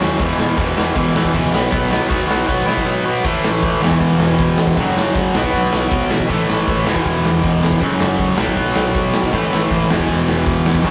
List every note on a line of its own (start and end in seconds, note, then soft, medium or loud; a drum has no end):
0.01 0.13 D#2 medium
0.01 0.19 F#2 medium
0.01 0.20 C#3 medium
0.01 0.20 F#3 loud
0.01 snare loud
0.20 0.44 E1 medium
0.20 0.39 E2 loud
0.20 0.39 B2 loud
0.20 0.39 E3 loud
0.20 kick loud
0.20 ride medium
0.40 0.57 E2 medium
0.40 0.58 B2 medium
0.40 0.59 E3 loud
0.40 snare loud
0.57 0.70 E1 loud
0.57 0.76 E2 loud
0.57 0.77 B2 loud
0.57 0.78 E3 loud
0.57 kick loud
0.57 ride medium
0.77 0.90 E1 medium
0.77 0.94 E2 loud
0.77 0.96 B2 medium
0.77 0.96 E3 medium
0.77 snare loud
0.95 1.08 E1 loud
0.95 1.14 E2 medium
0.95 1.15 B2 medium
0.95 1.15 E3 loud
0.95 kick loud
0.95 ride medium
1.15 1.27 E2 loud
1.15 1.32 E2 medium
1.15 1.33 B2 loud
1.15 1.34 E3 loud
1.15 snare loud
1.25 kick loud
1.33 1.47 C#2 medium
1.33 1.52 E2 medium
1.33 1.50 B2 medium
1.33 1.52 E3 loud
1.33 kick loud
1.33 ride medium
1.51 1.65 B1 medium
1.51 1.70 B2 medium
1.51 1.71 F#3 loud
1.51 1.71 B3 loud
1.51 snare loud
1.71 1.97 B1 medium
1.71 1.89 B2 medium
1.71 1.91 F#3 loud
1.71 1.91 B3 loud
1.71 kick loud
1.71 ride medium
1.91 2.07 B2 medium
1.91 2.08 F#3 medium
1.91 2.08 B3 medium
1.91 snare loud
2.08 2.23 B1 loud
2.08 2.25 B2 loud
2.08 2.26 F#3 medium
2.08 2.27 B3 loud
2.08 kick loud
2.08 ride medium
2.27 2.41 B1 loud
2.27 2.45 B2 loud
2.27 2.46 F#3 loud
2.27 2.46 B3 loud
2.31 snare loud
2.46 2.61 B1 loud
2.46 2.65 B2 loud
2.46 2.65 F#3 loud
2.46 2.66 B3 loud
2.46 kick loud
2.46 ride medium
2.66 2.84 B2 loud
2.66 2.80 B2 loud
2.66 2.85 F#3 loud
2.66 2.86 B3 loud
2.66 snare loud
2.77 kick medium
2.86 3.03 B2 medium
2.86 3.04 F#3 medium
2.86 3.04 B3 medium
3.05 3.23 B2 medium
3.05 3.23 F#3 medium
3.05 3.24 B3 medium
3.24 3.39 A1 loud
3.24 3.80 A2 loud
3.24 3.81 E3 loud
3.24 3.82 A3 loud
3.24 kick loud
3.24 crash loud
3.24 crash medium
3.44 3.58 A1 medium
3.44 snare loud
3.62 3.77 A1 loud
3.62 kick loud
3.62 crash medium
3.81 3.96 E1 loud
3.81 4.76 E2 loud
3.81 4.77 B2 loud
3.81 4.77 E3 loud
3.81 snare loud
3.91 kick medium
4.00 4.15 E1 loud
4.00 kick loud
4.00 crash medium
4.19 4.33 E1 loud
4.19 snare loud
4.38 4.53 E1 medium
4.38 kick loud
4.38 crash medium
4.57 4.72 E1 medium
4.57 snare loud
4.67 kick loud
4.77 4.91 F#1 loud
4.77 5.33 F#2 loud
4.77 5.34 C#3 loud
4.77 5.34 F#3 loud
4.77 kick loud
4.77 crash medium
4.95 5.09 F#1 loud
4.95 snare loud
5.15 5.29 F#1 loud
5.15 kick loud
5.15 crash medium
5.34 5.48 B1 loud
5.34 6.28 B2 loud
5.34 6.29 F#3 loud
5.34 6.30 B3 loud
5.34 snare loud
5.44 kick medium
5.53 5.67 B1 loud
5.53 kick loud
5.53 crash medium
5.73 5.86 B1 loud
5.73 snare loud
5.91 6.06 B1 medium
5.91 kick loud
5.91 crash medium
6.10 6.24 A1 medium
6.10 snare loud
6.20 kick loud
6.28 6.44 A1 medium
6.28 6.84 A2 loud
6.28 6.85 E3 loud
6.28 6.86 A3 loud
6.28 kick loud
6.28 crash medium
6.49 6.62 A1 medium
6.49 snare loud
6.67 6.81 A1 loud
6.67 kick loud
6.67 crash medium
6.86 7.00 E1 loud
6.86 7.80 E2 medium
6.86 7.81 B2 loud
6.86 7.82 E3 loud
6.86 snare loud
6.96 kick medium
7.05 7.19 E1 medium
7.05 kick loud
7.05 crash medium
7.25 7.39 E1 medium
7.25 snare loud
7.43 7.57 E1 medium
7.43 kick loud
7.43 crash medium
7.63 7.77 F1 medium
7.63 snare loud
7.72 kick medium
7.80 7.95 F#1 medium
7.80 8.36 F#2 loud
7.80 8.36 C#3 loud
7.80 8.37 F#3 loud
7.80 kick loud
7.80 crash medium
8.00 8.15 F#1 medium
8.00 snare loud
8.18 8.33 F#1 loud
8.18 kick loud
8.18 crash medium
8.36 8.53 B1 medium
8.36 9.31 B2 loud
8.36 9.32 F#3 loud
8.36 9.32 B3 loud
8.36 snare loud
8.47 kick medium
8.57 8.71 B1 loud
8.57 kick medium
8.57 crash medium
8.76 8.90 B1 loud
8.76 snare loud
8.94 9.09 B1 medium
8.94 kick loud
8.94 crash medium
9.14 9.28 G#1 medium
9.14 snare loud
9.23 kick medium
9.32 9.47 A1 medium
9.32 9.88 A2 loud
9.32 9.89 E3 loud
9.32 9.90 A3 loud
9.32 kick loud
9.32 crash medium
9.53 9.66 A1 loud
9.53 snare loud
9.71 9.85 A1 medium
9.71 kick loud
9.71 crash medium
9.89 10.04 E1 medium
9.89 10.82 E2 loud
9.89 10.84 B2 loud
9.89 10.84 E3 loud
9.89 snare loud
9.99 kick medium
10.09 10.22 E1 medium
10.09 kick loud
10.09 crash medium
10.28 10.42 E1 loud
10.28 snare loud
10.46 10.60 E1 medium
10.46 kick loud
10.46 crash medium
10.66 10.80 E1 medium
10.66 snare loud
10.75 kick medium
10.83 10.91 F#1 loud
10.83 10.91 F#2 loud
10.83 10.91 C#3 loud
10.83 10.91 F#3 loud
10.83 kick loud
10.83 crash medium